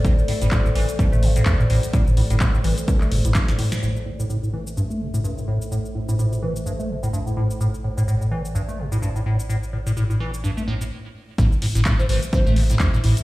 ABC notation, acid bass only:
X:1
M:4/4
L:1/16
Q:"Swing 16ths" 1/4=127
K:Am
V:1 name="Acid bass" clef=bass
A,, z A,, A,, A,, A,, E, z G,, A, B,, A,, G,, A,, A,, z | A,, z A,, A,, A,, A,, E, z G,, A, B,, A,, G,, A,, A,, z | A,, z A,, A,, A,, A,, E, z G,, A, B,, A,, G,, A,, A,, z | A,, z A,, A,, A,, A,, E, z G,, A, B,, A,, G,, A,, A,, z |
A,, z A,, A,, A,, A,, E, z G,, A, B,, A,, G,, A,, A,, z | A,, z A,, A,, A,, A,, E, z G,, A, A,, A,, z4 | A,, z A,, A,, A,, A,, E, z G,, A, B,, A,, G,, A,, A,, z |]